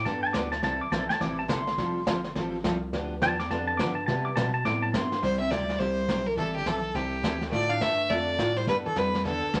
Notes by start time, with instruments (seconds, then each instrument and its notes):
0.05 analog synth bass G2, steel-string acoustic guitar G3 B3 D4 A4, pedal steel guitar A5, brush sweep, kick, snare
0.23 pedal steel guitar A5
0.33 analog synth bass D2, steel-string acoustic guitar G3 B3 D4 A4, pedal steel guitar D6, kick, snare, hi-hat pedal
0.52 pedal steel guitar A5, snare
0.63 analog synth bass C2, steel-string acoustic guitar C3 E3 G3 C4 E4 A4, pedal steel guitar A5, brush sweep, kick, snare
0.81 analog synth bass C2, pedal steel guitar D6
0.92 analog synth bass B1, steel-string acoustic guitar C3 E3 G3 C4 E4 A4, pedal steel guitar A5, kick, snare, hi-hat pedal
1.09 analog synth bass B1, pedal steel guitar A5, snare
1.20 analog synth bass A1, steel-string acoustic guitar C3 E3 G3 C4 E4 A4, pedal steel guitar D6, brush sweep, kick, snare
1.39 pedal steel guitar A5
1.48 analog synth bass G1, steel-string acoustic guitar C3 E3 G3 C4 E4 A4, pedal steel guitar C6, kick, snare, hi-hat pedal
1.67 snare
1.78 analog synth bass F1, steel-string acoustic guitar F3 G3 C4 F4 A4, brush sweep, kick, snare
2.06 analog synth bass G1, steel-string acoustic guitar F3 G3 C4 F4 A4, kick, snare, hi-hat pedal
2.24 snare
2.35 analog synth bass A1, steel-string acoustic guitar F3 G3 C4 F4 A4, brush sweep, kick, snare
2.64 analog synth bass C2, steel-string acoustic guitar F3 G3 C4 F4 A4, kick, snare, hi-hat pedal
2.93 analog synth bass D2, steel-string acoustic guitar D3 F3 B3 D4 G4, brush sweep, kick, snare
3.22 analog synth bass E2, steel-string acoustic guitar D3 F3 B3 D4 G4, pedal steel guitar A5, kick, snare, hi-hat pedal
3.40 pedal steel guitar D6, snare
3.50 analog synth bass F2, steel-string acoustic guitar D3 F3 B3 D4 G4, pedal steel guitar A5, brush sweep, kick, snare
3.67 pedal steel guitar A5
3.77 analog synth bass G2, steel-string acoustic guitar D3 F3 B3 D4, pedal steel guitar D6, kick, snare, hi-hat pedal
3.82 steel-string acoustic guitar G4
3.95 pedal steel guitar A5
4.06 analog synth bass C3, steel-string acoustic guitar C3 G3 B3 E4 G4, pedal steel guitar A5, brush sweep, kick, snare
4.25 pedal steel guitar D6
4.36 analog synth bass B2, steel-string acoustic guitar C3 G3 B3 E4 G4, pedal steel guitar A5, kick, snare, hi-hat pedal
4.54 pedal steel guitar A5
4.65 analog synth bass A2, steel-string acoustic guitar C3 G3 B3 E4 G4, pedal steel guitar D6, brush sweep, kick, snare
4.82 pedal steel guitar A5
4.94 analog synth bass G2, steel-string acoustic guitar C3 G3 B3 E4 G4, pedal steel guitar C6, kick, snare, hi-hat pedal
5.12 snare
5.22 analog synth bass C2, steel-string acoustic guitar C3 G3 C4 E4 G4, fiddle C5, brush sweep, kick, snare
5.40 hollow-body jazz guitar C4, fiddle E5
5.51 analog synth bass D2, steel-string acoustic guitar C3 G3 C4 E4 G4, fiddle D5, kick, snare, hi-hat pedal
5.69 snare
5.79 analog synth bass C2, steel-string acoustic guitar C3 G3 C4 E4 G4, fiddle C5, brush sweep, kick, snare
6.09 analog synth bass B1, steel-string acoustic guitar C3 G3 C4 E4 G4, kick, snare, hi-hat pedal
6.27 hollow-body jazz guitar E3, fiddle A#4
6.37 analog synth bass A1, steel-string acoustic guitar E3 G3 C4 E4 A4, fiddle A4, brush sweep, kick, snare
6.56 hollow-body jazz guitar D3, fiddle G4
6.66 analog synth bass B1, steel-string acoustic guitar E3 G3 C4 E4 A4, fiddle A4, kick, snare, hi-hat pedal
6.95 analog synth bass C2, hollow-body jazz guitar C3, steel-string acoustic guitar E3 G3 C4 E4 A4, fiddle G4, brush sweep, kick, snare
7.23 analog synth bass D2, steel-string acoustic guitar E3 G3 C4 E4 A4, kick, snare, hi-hat pedal
7.41 snare
7.52 analog synth bass A2, steel-string acoustic guitar D3 A3 D4 F4 A4, fiddle D5, brush sweep, kick, snare
7.70 hollow-body jazz guitar D4, fiddle F5
7.81 analog synth bass G2, steel-string acoustic guitar D3 A3 D4 F4 A4, fiddle E5, kick, snare, hi-hat pedal
8.10 analog synth bass F2, steel-string acoustic guitar D3 A3 D4 F4 A4, fiddle D5, brush sweep, kick, snare
8.38 analog synth bass A2, steel-string acoustic guitar D3 A3 D4 F4 A4, kick, snare, hi-hat pedal
8.56 hollow-body jazz guitar G3, fiddle C5, snare
8.67 analog synth bass G2, steel-string acoustic guitar G3 B3 D4 A4, fiddle B4, brush sweep, kick, snare
8.86 analog synth bass G2, hollow-body jazz guitar E3, fiddle A4
8.96 analog synth bass F2, steel-string acoustic guitar G3 B3 D4 A4, fiddle B4, kick, snare, hi-hat pedal
9.14 snare
9.25 analog synth bass E2, hollow-body jazz guitar D3, steel-string acoustic guitar G3 B3 D4 A4, fiddle A4, brush sweep, kick, snare
9.44 analog synth bass E2
9.54 analog synth bass D2, steel-string acoustic guitar G3 B3 D4 A4, kick, snare, hi-hat pedal